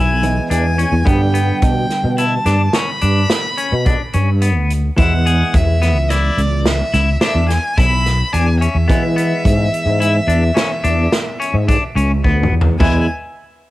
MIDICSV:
0, 0, Header, 1, 6, 480
1, 0, Start_track
1, 0, Tempo, 558140
1, 921, Time_signature, 7, 2, 24, 8
1, 11784, End_track
2, 0, Start_track
2, 0, Title_t, "Violin"
2, 0, Program_c, 0, 40
2, 0, Note_on_c, 0, 80, 87
2, 410, Note_off_c, 0, 80, 0
2, 444, Note_on_c, 0, 80, 87
2, 920, Note_on_c, 0, 79, 96
2, 932, Note_off_c, 0, 80, 0
2, 1399, Note_off_c, 0, 79, 0
2, 1405, Note_on_c, 0, 79, 94
2, 1851, Note_off_c, 0, 79, 0
2, 1887, Note_on_c, 0, 81, 89
2, 2362, Note_on_c, 0, 83, 115
2, 2375, Note_off_c, 0, 81, 0
2, 3805, Note_off_c, 0, 83, 0
2, 4293, Note_on_c, 0, 78, 95
2, 4775, Note_on_c, 0, 76, 95
2, 4788, Note_off_c, 0, 78, 0
2, 5252, Note_on_c, 0, 74, 91
2, 5265, Note_off_c, 0, 76, 0
2, 5737, Note_on_c, 0, 76, 92
2, 5750, Note_off_c, 0, 74, 0
2, 6209, Note_off_c, 0, 76, 0
2, 6215, Note_on_c, 0, 76, 102
2, 6435, Note_off_c, 0, 76, 0
2, 6451, Note_on_c, 0, 80, 94
2, 6688, Note_on_c, 0, 83, 112
2, 6701, Note_off_c, 0, 80, 0
2, 7163, Note_on_c, 0, 80, 101
2, 7176, Note_off_c, 0, 83, 0
2, 7398, Note_off_c, 0, 80, 0
2, 7403, Note_on_c, 0, 76, 103
2, 10487, Note_off_c, 0, 76, 0
2, 11001, Note_on_c, 0, 80, 88
2, 11224, Note_off_c, 0, 80, 0
2, 11784, End_track
3, 0, Start_track
3, 0, Title_t, "Clean electric guitar"
3, 0, Program_c, 1, 27
3, 0, Note_on_c, 1, 64, 75
3, 210, Note_off_c, 1, 64, 0
3, 432, Note_on_c, 1, 62, 67
3, 562, Note_off_c, 1, 62, 0
3, 674, Note_on_c, 1, 61, 67
3, 804, Note_off_c, 1, 61, 0
3, 909, Note_on_c, 1, 59, 75
3, 1040, Note_off_c, 1, 59, 0
3, 1152, Note_on_c, 1, 59, 72
3, 1410, Note_off_c, 1, 59, 0
3, 1879, Note_on_c, 1, 64, 76
3, 2008, Note_off_c, 1, 64, 0
3, 2115, Note_on_c, 1, 62, 76
3, 2245, Note_off_c, 1, 62, 0
3, 2358, Note_on_c, 1, 61, 69
3, 2487, Note_off_c, 1, 61, 0
3, 2595, Note_on_c, 1, 62, 76
3, 2853, Note_off_c, 1, 62, 0
3, 3075, Note_on_c, 1, 61, 76
3, 3206, Note_off_c, 1, 61, 0
3, 3322, Note_on_c, 1, 62, 75
3, 3451, Note_off_c, 1, 62, 0
3, 3560, Note_on_c, 1, 61, 74
3, 3690, Note_off_c, 1, 61, 0
3, 3799, Note_on_c, 1, 59, 74
3, 4057, Note_off_c, 1, 59, 0
3, 4280, Note_on_c, 1, 64, 78
3, 4409, Note_off_c, 1, 64, 0
3, 4527, Note_on_c, 1, 68, 76
3, 4783, Note_off_c, 1, 68, 0
3, 5003, Note_on_c, 1, 59, 75
3, 5132, Note_off_c, 1, 59, 0
3, 5248, Note_on_c, 1, 64, 83
3, 5504, Note_off_c, 1, 64, 0
3, 5965, Note_on_c, 1, 64, 67
3, 6094, Note_off_c, 1, 64, 0
3, 6203, Note_on_c, 1, 62, 74
3, 6460, Note_off_c, 1, 62, 0
3, 6686, Note_on_c, 1, 64, 79
3, 6942, Note_off_c, 1, 64, 0
3, 7163, Note_on_c, 1, 62, 80
3, 7292, Note_off_c, 1, 62, 0
3, 7406, Note_on_c, 1, 61, 67
3, 7535, Note_off_c, 1, 61, 0
3, 7634, Note_on_c, 1, 59, 78
3, 7766, Note_off_c, 1, 59, 0
3, 7881, Note_on_c, 1, 59, 74
3, 8138, Note_off_c, 1, 59, 0
3, 8603, Note_on_c, 1, 64, 75
3, 8732, Note_off_c, 1, 64, 0
3, 8840, Note_on_c, 1, 62, 86
3, 8970, Note_off_c, 1, 62, 0
3, 9074, Note_on_c, 1, 61, 84
3, 9205, Note_off_c, 1, 61, 0
3, 9320, Note_on_c, 1, 62, 78
3, 9576, Note_off_c, 1, 62, 0
3, 9802, Note_on_c, 1, 61, 72
3, 9930, Note_off_c, 1, 61, 0
3, 10047, Note_on_c, 1, 62, 87
3, 10174, Note_off_c, 1, 62, 0
3, 10287, Note_on_c, 1, 61, 76
3, 10414, Note_off_c, 1, 61, 0
3, 10529, Note_on_c, 1, 59, 81
3, 10783, Note_off_c, 1, 59, 0
3, 11012, Note_on_c, 1, 64, 65
3, 11230, Note_off_c, 1, 64, 0
3, 11784, End_track
4, 0, Start_track
4, 0, Title_t, "Hollow-body jazz guitar"
4, 0, Program_c, 2, 26
4, 195, Note_on_c, 2, 52, 42
4, 200, Note_on_c, 2, 56, 40
4, 200, Note_on_c, 2, 59, 39
4, 203, Note_on_c, 2, 64, 48
4, 897, Note_off_c, 2, 59, 0
4, 898, Note_off_c, 2, 52, 0
4, 901, Note_on_c, 2, 50, 65
4, 903, Note_off_c, 2, 56, 0
4, 907, Note_on_c, 2, 55, 65
4, 909, Note_off_c, 2, 64, 0
4, 909, Note_on_c, 2, 59, 58
4, 912, Note_on_c, 2, 62, 73
4, 4242, Note_off_c, 2, 50, 0
4, 4245, Note_off_c, 2, 55, 0
4, 4246, Note_off_c, 2, 59, 0
4, 4248, Note_off_c, 2, 62, 0
4, 4271, Note_on_c, 2, 52, 66
4, 4279, Note_on_c, 2, 56, 64
4, 4283, Note_on_c, 2, 59, 62
4, 4284, Note_on_c, 2, 64, 75
4, 7606, Note_off_c, 2, 52, 0
4, 7611, Note_off_c, 2, 56, 0
4, 7613, Note_off_c, 2, 59, 0
4, 7613, Note_off_c, 2, 64, 0
4, 7641, Note_on_c, 2, 52, 68
4, 7647, Note_on_c, 2, 56, 66
4, 7648, Note_on_c, 2, 59, 64
4, 7651, Note_on_c, 2, 64, 84
4, 10965, Note_off_c, 2, 52, 0
4, 10967, Note_off_c, 2, 59, 0
4, 10969, Note_off_c, 2, 56, 0
4, 10970, Note_off_c, 2, 64, 0
4, 11005, Note_on_c, 2, 52, 85
4, 11008, Note_on_c, 2, 56, 74
4, 11009, Note_on_c, 2, 59, 72
4, 11015, Note_on_c, 2, 64, 101
4, 11227, Note_off_c, 2, 59, 0
4, 11228, Note_off_c, 2, 52, 0
4, 11228, Note_off_c, 2, 56, 0
4, 11228, Note_off_c, 2, 64, 0
4, 11784, End_track
5, 0, Start_track
5, 0, Title_t, "Fretless electric bass"
5, 0, Program_c, 3, 35
5, 0, Note_on_c, 3, 35, 74
5, 328, Note_off_c, 3, 35, 0
5, 436, Note_on_c, 3, 40, 83
5, 714, Note_off_c, 3, 40, 0
5, 788, Note_on_c, 3, 40, 83
5, 886, Note_off_c, 3, 40, 0
5, 918, Note_on_c, 3, 43, 90
5, 1289, Note_off_c, 3, 43, 0
5, 1396, Note_on_c, 3, 47, 86
5, 1583, Note_off_c, 3, 47, 0
5, 1752, Note_on_c, 3, 47, 84
5, 2033, Note_off_c, 3, 47, 0
5, 2111, Note_on_c, 3, 43, 70
5, 2301, Note_off_c, 3, 43, 0
5, 2600, Note_on_c, 3, 43, 83
5, 2786, Note_off_c, 3, 43, 0
5, 3200, Note_on_c, 3, 47, 90
5, 3387, Note_off_c, 3, 47, 0
5, 3563, Note_on_c, 3, 43, 90
5, 3924, Note_off_c, 3, 43, 0
5, 3924, Note_on_c, 3, 38, 75
5, 4202, Note_off_c, 3, 38, 0
5, 4285, Note_on_c, 3, 40, 98
5, 4655, Note_off_c, 3, 40, 0
5, 4768, Note_on_c, 3, 40, 92
5, 5124, Note_off_c, 3, 40, 0
5, 5124, Note_on_c, 3, 37, 78
5, 5402, Note_off_c, 3, 37, 0
5, 5481, Note_on_c, 3, 37, 68
5, 5853, Note_off_c, 3, 37, 0
5, 5963, Note_on_c, 3, 37, 91
5, 6150, Note_off_c, 3, 37, 0
5, 6318, Note_on_c, 3, 40, 79
5, 6506, Note_off_c, 3, 40, 0
5, 6689, Note_on_c, 3, 35, 86
5, 7057, Note_off_c, 3, 35, 0
5, 7169, Note_on_c, 3, 40, 97
5, 7445, Note_off_c, 3, 40, 0
5, 7522, Note_on_c, 3, 40, 86
5, 7617, Note_off_c, 3, 40, 0
5, 7647, Note_on_c, 3, 52, 96
5, 8016, Note_off_c, 3, 52, 0
5, 8127, Note_on_c, 3, 44, 105
5, 8312, Note_off_c, 3, 44, 0
5, 8476, Note_on_c, 3, 44, 99
5, 8757, Note_off_c, 3, 44, 0
5, 8834, Note_on_c, 3, 40, 86
5, 9023, Note_off_c, 3, 40, 0
5, 9325, Note_on_c, 3, 40, 91
5, 9510, Note_off_c, 3, 40, 0
5, 9921, Note_on_c, 3, 44, 92
5, 10107, Note_off_c, 3, 44, 0
5, 10281, Note_on_c, 3, 37, 85
5, 10498, Note_off_c, 3, 37, 0
5, 10530, Note_on_c, 3, 38, 89
5, 10743, Note_off_c, 3, 38, 0
5, 10762, Note_on_c, 3, 40, 84
5, 10978, Note_off_c, 3, 40, 0
5, 11009, Note_on_c, 3, 40, 85
5, 11229, Note_off_c, 3, 40, 0
5, 11784, End_track
6, 0, Start_track
6, 0, Title_t, "Drums"
6, 198, Note_on_c, 9, 42, 61
6, 284, Note_off_c, 9, 42, 0
6, 438, Note_on_c, 9, 42, 80
6, 524, Note_off_c, 9, 42, 0
6, 679, Note_on_c, 9, 42, 60
6, 765, Note_off_c, 9, 42, 0
6, 916, Note_on_c, 9, 42, 69
6, 918, Note_on_c, 9, 36, 101
6, 1002, Note_off_c, 9, 42, 0
6, 1004, Note_off_c, 9, 36, 0
6, 1159, Note_on_c, 9, 42, 64
6, 1245, Note_off_c, 9, 42, 0
6, 1393, Note_on_c, 9, 42, 75
6, 1397, Note_on_c, 9, 36, 93
6, 1479, Note_off_c, 9, 42, 0
6, 1483, Note_off_c, 9, 36, 0
6, 1636, Note_on_c, 9, 38, 31
6, 1636, Note_on_c, 9, 42, 49
6, 1722, Note_off_c, 9, 38, 0
6, 1722, Note_off_c, 9, 42, 0
6, 1874, Note_on_c, 9, 42, 79
6, 1960, Note_off_c, 9, 42, 0
6, 2113, Note_on_c, 9, 38, 34
6, 2113, Note_on_c, 9, 42, 55
6, 2199, Note_off_c, 9, 38, 0
6, 2199, Note_off_c, 9, 42, 0
6, 2350, Note_on_c, 9, 38, 86
6, 2350, Note_on_c, 9, 42, 75
6, 2436, Note_off_c, 9, 38, 0
6, 2436, Note_off_c, 9, 42, 0
6, 2591, Note_on_c, 9, 42, 57
6, 2677, Note_off_c, 9, 42, 0
6, 2836, Note_on_c, 9, 38, 92
6, 2836, Note_on_c, 9, 42, 75
6, 2922, Note_off_c, 9, 38, 0
6, 2922, Note_off_c, 9, 42, 0
6, 3077, Note_on_c, 9, 42, 62
6, 3163, Note_off_c, 9, 42, 0
6, 3318, Note_on_c, 9, 42, 69
6, 3322, Note_on_c, 9, 36, 103
6, 3404, Note_off_c, 9, 42, 0
6, 3408, Note_off_c, 9, 36, 0
6, 3555, Note_on_c, 9, 42, 56
6, 3641, Note_off_c, 9, 42, 0
6, 3798, Note_on_c, 9, 42, 83
6, 3884, Note_off_c, 9, 42, 0
6, 4044, Note_on_c, 9, 42, 64
6, 4130, Note_off_c, 9, 42, 0
6, 4279, Note_on_c, 9, 42, 72
6, 4284, Note_on_c, 9, 36, 104
6, 4365, Note_off_c, 9, 42, 0
6, 4370, Note_off_c, 9, 36, 0
6, 4528, Note_on_c, 9, 42, 66
6, 4614, Note_off_c, 9, 42, 0
6, 4762, Note_on_c, 9, 42, 84
6, 4765, Note_on_c, 9, 36, 105
6, 4848, Note_off_c, 9, 42, 0
6, 4851, Note_off_c, 9, 36, 0
6, 5008, Note_on_c, 9, 38, 31
6, 5008, Note_on_c, 9, 42, 50
6, 5094, Note_off_c, 9, 38, 0
6, 5094, Note_off_c, 9, 42, 0
6, 5247, Note_on_c, 9, 38, 35
6, 5247, Note_on_c, 9, 42, 80
6, 5333, Note_off_c, 9, 38, 0
6, 5333, Note_off_c, 9, 42, 0
6, 5488, Note_on_c, 9, 42, 58
6, 5574, Note_off_c, 9, 42, 0
6, 5724, Note_on_c, 9, 38, 92
6, 5724, Note_on_c, 9, 42, 64
6, 5810, Note_off_c, 9, 38, 0
6, 5810, Note_off_c, 9, 42, 0
6, 5966, Note_on_c, 9, 38, 29
6, 5966, Note_on_c, 9, 42, 56
6, 6052, Note_off_c, 9, 38, 0
6, 6052, Note_off_c, 9, 42, 0
6, 6201, Note_on_c, 9, 38, 96
6, 6201, Note_on_c, 9, 42, 78
6, 6287, Note_off_c, 9, 38, 0
6, 6287, Note_off_c, 9, 42, 0
6, 6452, Note_on_c, 9, 38, 32
6, 6452, Note_on_c, 9, 42, 65
6, 6538, Note_off_c, 9, 38, 0
6, 6538, Note_off_c, 9, 42, 0
6, 6689, Note_on_c, 9, 36, 104
6, 6692, Note_on_c, 9, 38, 29
6, 6692, Note_on_c, 9, 42, 76
6, 6775, Note_off_c, 9, 36, 0
6, 6778, Note_off_c, 9, 38, 0
6, 6778, Note_off_c, 9, 42, 0
6, 6933, Note_on_c, 9, 38, 34
6, 6933, Note_on_c, 9, 42, 58
6, 7019, Note_off_c, 9, 38, 0
6, 7019, Note_off_c, 9, 42, 0
6, 7171, Note_on_c, 9, 42, 77
6, 7257, Note_off_c, 9, 42, 0
6, 7413, Note_on_c, 9, 42, 63
6, 7499, Note_off_c, 9, 42, 0
6, 7650, Note_on_c, 9, 36, 100
6, 7651, Note_on_c, 9, 42, 80
6, 7736, Note_off_c, 9, 36, 0
6, 7737, Note_off_c, 9, 42, 0
6, 7893, Note_on_c, 9, 42, 68
6, 7979, Note_off_c, 9, 42, 0
6, 8129, Note_on_c, 9, 36, 101
6, 8130, Note_on_c, 9, 42, 84
6, 8215, Note_off_c, 9, 36, 0
6, 8216, Note_off_c, 9, 42, 0
6, 8373, Note_on_c, 9, 42, 64
6, 8459, Note_off_c, 9, 42, 0
6, 8613, Note_on_c, 9, 42, 84
6, 8699, Note_off_c, 9, 42, 0
6, 8852, Note_on_c, 9, 42, 63
6, 8938, Note_off_c, 9, 42, 0
6, 9087, Note_on_c, 9, 38, 98
6, 9087, Note_on_c, 9, 42, 81
6, 9173, Note_off_c, 9, 38, 0
6, 9173, Note_off_c, 9, 42, 0
6, 9325, Note_on_c, 9, 42, 54
6, 9411, Note_off_c, 9, 42, 0
6, 9567, Note_on_c, 9, 38, 98
6, 9567, Note_on_c, 9, 42, 71
6, 9653, Note_off_c, 9, 38, 0
6, 9653, Note_off_c, 9, 42, 0
6, 9816, Note_on_c, 9, 42, 57
6, 9902, Note_off_c, 9, 42, 0
6, 10050, Note_on_c, 9, 36, 100
6, 10050, Note_on_c, 9, 42, 76
6, 10136, Note_off_c, 9, 36, 0
6, 10136, Note_off_c, 9, 42, 0
6, 10296, Note_on_c, 9, 42, 56
6, 10382, Note_off_c, 9, 42, 0
6, 10530, Note_on_c, 9, 36, 61
6, 10616, Note_off_c, 9, 36, 0
6, 10692, Note_on_c, 9, 45, 70
6, 10778, Note_off_c, 9, 45, 0
6, 10847, Note_on_c, 9, 43, 103
6, 10933, Note_off_c, 9, 43, 0
6, 11010, Note_on_c, 9, 36, 103
6, 11012, Note_on_c, 9, 43, 88
6, 11012, Note_on_c, 9, 49, 80
6, 11096, Note_off_c, 9, 36, 0
6, 11098, Note_off_c, 9, 43, 0
6, 11098, Note_off_c, 9, 49, 0
6, 11784, End_track
0, 0, End_of_file